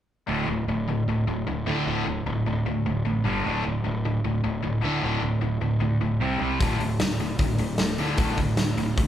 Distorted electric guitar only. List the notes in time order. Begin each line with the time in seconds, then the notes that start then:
0.27 D2 A2 D3
0.48 D2 A2
0.69 D2 A2
0.88 D2 A2
1.09 D2 A2
1.27 D2 A2
1.47 D2 A2
1.66 D2 A2 D3
1.85 D2 A2 D3
2.06 D2 A2
2.26 D2 A2
2.46 D2 A2
2.66 D2 A2
2.86 D2 A2
3.05 D2 A2
3.24 G2 D3 G3
3.43 D2 A2 D3
3.63 D2 A2
3.84 D2 A2
4.05 D2 A2
4.24 D2 A2
4.44 D2 A2
4.63 D2 A2
4.81 D2 A2 D3
5.01 D2 A2 D3
5.21 D2 A2
5.41 D2 A2
5.61 D2 A2
5.80 D2 A2
6.01 D2 A2
6.21 C3 G3 C4
6.40 C3 G3 C4
6.60 D2 A2 D3
6.81 D2 A2
7.00 D2 A2
7.20 D2 A2
7.40 D2 A2
7.59 D2 A2
7.79 D2 A2
7.99 D2 A2 D3
8.18 D2 A2 D3
8.38 D2 A2
8.57 D2 A2
8.78 D2 A2
8.97 D2 A2